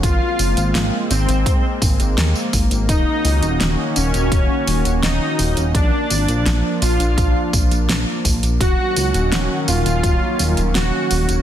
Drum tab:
HH |x-oxx-oxx-oxx-ox|x-oxx-oxx-oxx-ox|x-oxx-oxx-oxx-ox|x-oxx-oxx-oxx-ox|
TB |x-xxx-xxx-xxxxxx|x-xxx-xxx-xxx-xx|x-xxx-xxx-xxx-xx|x-xxx-xxx-xxx-xx|
SD |----o-------o---|----o-------o---|----o-------o---|----o-------o---|
BD |o-------o-o---o-|o-------o-------|o-------o-o---o-|o-------o-------|